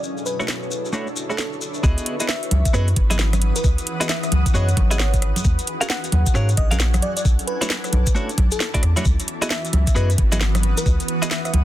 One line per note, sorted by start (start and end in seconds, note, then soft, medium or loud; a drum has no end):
0.00 1.82 B2 medium
0.00 0.64 F#3 medium
0.00 1.82 D4 medium
0.00 1.84 D4 medium
0.00 1.82 E4 medium
0.00 1.82 F#4 medium
0.00 1.82 A4 medium
0.00 1.84 A4 medium
0.00 5.45 B4 medium
0.00 1.82 C#5 medium
0.00 maracas soft
0.18 maracas soft
0.26 0.90 B4 medium
0.26 maracas medium
0.36 0.45 E4 medium
0.36 2.88 C#5 medium
0.36 0.45 C#5 loud
0.40 0.45 A3 medium
0.40 0.45 D4 medium
0.40 0.45 F#4 medium
0.40 maracas soft
0.48 snare loud
0.48 maracas soft
0.63 maracas soft
0.71 maracas medium
0.85 maracas soft
0.93 1.07 A3 medium
0.93 1.07 D4 medium
0.93 1.07 E4 medium
0.93 1.07 F#4 medium
0.93 1.07 C#5 medium
0.93 maracas soft
1.07 maracas soft
1.16 maracas medium
1.30 1.35 A3 medium
1.30 1.35 D4 medium
1.30 1.35 E4 medium
1.30 1.35 F#4 medium
1.30 1.61 A4 medium
1.30 1.35 C#5 medium
1.30 maracas soft
1.38 snare loud
1.38 maracas soft
1.53 maracas soft
1.61 maracas medium
1.74 maracas soft
1.83 1.95 C#2 loud
1.83 5.45 E3 medium
1.83 2.15 B3 medium
1.83 5.41 C#4 medium
1.83 5.41 E4 medium
1.83 2.15 E4 medium
1.83 2.15 F#4 medium
1.83 3.62 F#4 medium
1.83 2.15 G#4 medium
1.83 5.41 B4 medium
1.83 2.15 D#5 loud
1.83 kick loud
1.83 maracas medium
1.98 closed hi-hat medium
1.98 maracas soft
2.06 closed hi-hat loud
2.10 6.09 D#6 medium
2.20 2.26 B3 medium
2.20 2.26 E4 medium
2.20 2.26 F#4 medium
2.20 2.26 G#4 medium
2.20 2.26 D#5 loud
2.20 closed hi-hat medium
2.20 maracas medium
2.29 2.72 E5 loud
2.29 snare loud
2.29 maracas medium
2.43 5.45 F#5 medium
2.43 closed hi-hat soft
2.43 maracas soft
2.51 2.63 C#2 medium
2.51 closed hi-hat loud
2.51 high conga medium
2.65 kick loud
2.65 closed hi-hat medium
2.65 maracas medium
2.73 2.94 F#2 loud
2.73 2.88 B3 medium
2.73 2.88 E4 medium
2.73 2.88 F#4 medium
2.73 2.88 G#4 medium
2.73 2.91 B4 medium
2.73 2.88 D#5 medium
2.73 cross-stick medium
2.73 maracas medium
2.88 closed hi-hat soft
2.88 maracas soft
2.96 3.52 G#1 medium
2.96 kick loud
2.96 closed hi-hat loud
3.10 3.16 B3 medium
3.10 3.16 E4 medium
3.10 3.16 F#4 medium
3.10 3.16 G#4 medium
3.10 3.16 D#5 loud
3.10 closed hi-hat medium
3.10 high conga medium
3.10 maracas medium
3.19 snare loud
3.19 maracas medium
3.33 cross-stick medium
3.33 closed hi-hat medium
3.33 high conga medium
3.33 maracas soft
3.42 closed hi-hat loud
3.56 3.69 B4 medium
3.56 closed hi-hat medium
3.56 maracas medium
3.64 3.76 C#2 medium
3.64 5.43 G#4 medium
3.64 kick loud
3.64 maracas medium
3.78 closed hi-hat medium
3.78 maracas soft
3.87 closed hi-hat loud
4.00 4.06 B3 medium
4.00 4.06 E4 loud
4.00 4.06 F#4 medium
4.00 4.06 G#4 medium
4.00 4.06 D#5 loud
4.00 closed hi-hat medium
4.00 maracas medium
4.09 4.18 E5 medium
4.09 snare loud
4.09 maracas medium
4.23 4.29 E5 medium
4.23 cross-stick medium
4.23 closed hi-hat soft
4.23 maracas soft
4.32 4.44 C#2 medium
4.32 closed hi-hat loud
4.32 high conga medium
4.46 kick loud
4.46 closed hi-hat medium
4.46 maracas medium
4.54 4.74 F#2 loud
4.54 4.68 B3 medium
4.54 4.68 E4 medium
4.54 4.68 F#4 medium
4.54 4.68 G#4 medium
4.54 5.19 C#5 medium
4.54 4.68 D#5 medium
4.54 maracas medium
4.69 closed hi-hat soft
4.69 maracas soft
4.77 5.32 G#1 medium
4.77 kick loud
4.77 closed hi-hat loud
4.77 high conga medium
4.91 4.96 B3 medium
4.91 4.96 E4 loud
4.91 4.96 F#4 medium
4.91 4.96 G#4 medium
4.91 4.96 D#5 loud
4.91 closed hi-hat medium
4.91 maracas medium
5.00 cross-stick medium
5.00 snare loud
5.00 maracas medium
5.14 kick medium
5.14 closed hi-hat medium
5.14 maracas soft
5.22 cross-stick medium
5.22 closed hi-hat loud
5.36 closed hi-hat medium
5.36 high conga medium
5.36 maracas medium
5.44 5.56 D#2 loud
5.44 7.86 F#3 medium
5.44 9.02 C#4 medium
5.44 7.01 D#4 medium
5.44 7.01 F#4 medium
5.44 7.01 G#4 medium
5.44 kick loud
5.44 maracas medium
5.59 closed hi-hat medium
5.59 maracas soft
5.67 closed hi-hat loud
5.81 5.86 C#4 medium
5.81 5.86 F#4 medium
5.81 5.86 G#4 medium
5.81 5.86 A#4 medium
5.81 5.86 F5 loud
5.81 closed hi-hat medium
5.81 maracas medium
5.90 6.33 F#5 medium
5.90 snare loud
5.90 maracas medium
6.04 closed hi-hat soft
6.04 maracas soft
6.12 6.24 D#2 medium
6.12 closed hi-hat loud
6.12 high conga medium
6.26 kick loud
6.26 closed hi-hat medium
6.26 maracas medium
6.34 6.55 G#2 loud
6.34 6.49 C#4 medium
6.34 6.49 F#4 medium
6.34 6.49 G#4 medium
6.34 6.49 A#4 medium
6.34 6.52 C#5 medium
6.34 6.49 F5 medium
6.34 cross-stick medium
6.34 maracas medium
6.49 closed hi-hat soft
6.49 maracas soft
6.57 7.00 A#1 medium
6.57 6.74 D#5 medium
6.57 kick loud
6.57 closed hi-hat loud
6.71 6.77 C#4 medium
6.71 6.77 F#4 medium
6.71 6.77 G#4 medium
6.71 6.77 A#4 medium
6.71 6.77 F5 loud
6.71 closed hi-hat medium
6.71 high conga medium
6.71 maracas medium
6.80 snare loud
6.80 maracas medium
6.94 cross-stick medium
6.94 closed hi-hat medium
6.94 high conga medium
6.94 maracas soft
7.02 11.64 E3 medium
7.02 9.04 D4 medium
7.02 11.64 E4 medium
7.02 9.04 A4 medium
7.02 7.11 D5 medium
7.02 closed hi-hat loud
7.11 9.05 D6 medium
7.17 7.22 D5 medium
7.17 9.05 A5 medium
7.17 closed hi-hat medium
7.17 maracas medium
7.25 7.37 B1 loud
7.25 kick loud
7.25 maracas medium
7.39 closed hi-hat medium
7.39 maracas soft
7.47 8.12 B4 loud
7.47 closed hi-hat loud
7.61 7.67 A3 medium
7.61 7.67 D4 medium
7.61 7.67 E4 medium
7.61 7.67 F#4 medium
7.61 7.67 C#5 loud
7.61 closed hi-hat medium
7.61 maracas medium
7.70 snare loud
7.70 maracas medium
7.84 cross-stick soft
7.84 closed hi-hat soft
7.84 maracas soft
7.93 8.04 B1 medium
7.93 closed hi-hat loud
7.93 high conga medium
8.07 kick loud
8.07 closed hi-hat medium
8.07 maracas medium
8.15 8.29 A3 medium
8.15 8.29 D4 medium
8.15 8.29 E4 medium
8.15 8.29 F#4 medium
8.15 8.29 C#5 medium
8.15 maracas medium
8.29 closed hi-hat soft
8.29 maracas soft
8.38 8.50 B1 loud
8.38 kick loud
8.38 closed hi-hat loud
8.38 high conga medium
8.51 8.83 A4 loud
8.51 closed hi-hat medium
8.51 maracas medium
8.60 cross-stick medium
8.60 snare loud
8.60 maracas medium
8.74 8.83 A3 medium
8.74 8.83 D4 medium
8.74 8.83 E4 medium
8.74 8.83 F#4 medium
8.74 8.83 D5 medium
8.74 kick medium
8.74 closed hi-hat medium
8.74 maracas soft
8.83 8.95 E2 medium
8.83 cross-stick medium
8.83 closed hi-hat loud
8.96 9.04 A3 medium
8.96 9.04 D4 medium
8.96 9.04 E4 medium
8.96 9.04 F#4 medium
8.96 9.04 C#5 medium
8.96 closed hi-hat medium
8.96 high conga medium
8.96 maracas medium
9.05 9.17 C#2 loud
9.05 11.64 B3 medium
9.05 11.64 C#4 medium
9.05 11.64 F#4 medium
9.05 kick loud
9.05 maracas medium
9.20 11.64 B4 medium
9.20 closed hi-hat medium
9.20 maracas soft
9.28 closed hi-hat loud
9.38 9.47 E4 loud
9.38 11.64 D#6 medium
9.42 9.47 B3 medium
9.42 9.47 F#4 medium
9.42 9.47 G#4 medium
9.42 9.47 D#5 loud
9.42 11.64 F#5 medium
9.42 closed hi-hat medium
9.42 maracas medium
9.50 9.94 E5 medium
9.50 snare loud
9.50 maracas medium
9.65 closed hi-hat soft
9.65 maracas soft
9.73 9.85 C#2 medium
9.73 closed hi-hat loud
9.73 high conga medium
9.87 kick loud
9.87 closed hi-hat medium
9.87 maracas medium
9.95 10.15 F#2 loud
9.95 10.09 B3 medium
9.95 10.09 E4 medium
9.95 10.09 F#4 medium
9.95 10.10 G#4 medium
9.95 10.13 B4 medium
9.95 10.09 D#5 medium
9.95 cross-stick medium
9.95 maracas medium
10.10 closed hi-hat soft
10.10 maracas soft
10.18 10.74 G#1 medium
10.18 kick loud
10.18 closed hi-hat loud
10.32 10.38 B3 medium
10.32 10.38 E4 medium
10.32 10.38 F#4 medium
10.32 10.37 G#4 medium
10.32 10.38 D#5 loud
10.32 closed hi-hat medium
10.32 high conga medium
10.32 maracas medium
10.41 snare loud
10.41 maracas medium
10.55 cross-stick medium
10.55 closed hi-hat medium
10.55 high conga medium
10.55 maracas soft
10.63 closed hi-hat loud
10.77 10.91 B4 loud
10.77 closed hi-hat medium
10.77 maracas medium
10.86 10.98 C#2 loud
10.86 kick loud
10.86 maracas medium
11.00 closed hi-hat medium
11.00 maracas soft
11.08 closed hi-hat loud
11.22 11.28 B3 medium
11.22 11.28 E4 medium
11.22 11.28 F#4 medium
11.22 11.28 G#4 medium
11.22 11.28 D#5 loud
11.22 closed hi-hat medium
11.22 maracas medium
11.31 11.40 E5 medium
11.31 snare loud
11.31 maracas medium
11.45 11.51 E5 medium
11.45 cross-stick soft
11.45 closed hi-hat soft
11.45 maracas soft
11.53 11.64 C#2 medium
11.53 closed hi-hat loud
11.53 high conga medium